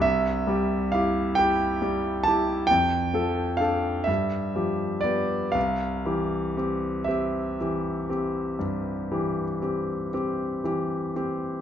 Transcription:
\new Staff \with { instrumentName = "Grand piano" } { \time 12/8 \key c \major \tempo 4. = 40 << { e''4 f''8 g''4 a''8 g''4 f''8 e''4 d''8 | f''4. e''2. r4. | } \\ { c,8 <g g'>8 <e' g'>8 <e' g'>8 <g g'>8 <e' g'>8 f,8 <f a'>8 <d' a'>8 g,8 <f g'>8 <b g'>8 | c,8 <e g'>8 <c' g'>8 <c' g'>8 <e g'>8 <c' g'>8 g,8 <e g'>8 <c' g'>8 <c' g'>8 <e g'>8 <c' g'>8 | } >> }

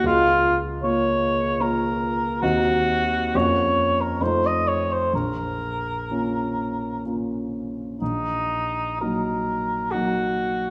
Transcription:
<<
  \new Staff \with { instrumentName = "Cor anglais" } { \time 3/4 \key bes \minor \tempo 4 = 67 f'8. r16 des''4 bes'4 | ges'4 des''8. bes'16 c''16 ees''16 des''16 c''16 | bes'2 r4 | ees'4 bes'4 ges'4 | }
  \new Staff \with { instrumentName = "Grand piano" } { \time 3/4 \key bes \minor des,4 <bes f'>4 <bes f'>4 | <ees, c' ees' ges'>4 <f, bes des' f'>4 <f, a ees' f'>4 | bes,,4 <bes des' f'>4 <bes des' f'>4 | bes,,4 <ges bes ees'>4 <ges bes ees'>4 | }
>>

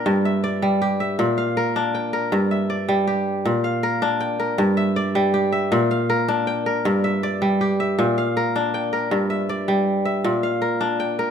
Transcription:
<<
  \new Staff \with { instrumentName = "Kora" } { \time 12/8 \key g \dorian \tempo 4. = 106 <bes' g''>8 e''8 d''4 g'8 e''4 f''8 bes'4 g''8 bes'8~ | bes'8 e''8 d''4 g'4. f''8 bes'4 g''8 bes'8~ | bes'8 e''8 d''4 g'8 e''4 f''8 bes'4 g''8 bes'8~ | bes'8 e''8 d''4 g'8 e''4 f''8 bes'4 g''8 bes'8~ |
bes'8 e''8 d''4. e''4 f''8 bes'4 g''8 bes'8 | }
  \new Staff \with { instrumentName = "Kora" } { \clef bass \time 12/8 \key g \dorian g,4 r8 g4 r8 bes,4 r8 d'4 r8 | g,4 r8 g4 r8 bes,4 r8 d'4 r8 | g,4 r8 g4 r8 bes,4 r8 d'4 r8 | g,4 r8 g4 r8 bes,4 r8 d'4 r8 |
g,4 r8 g4 r8 bes,4 r8 d'4 r8 | }
>>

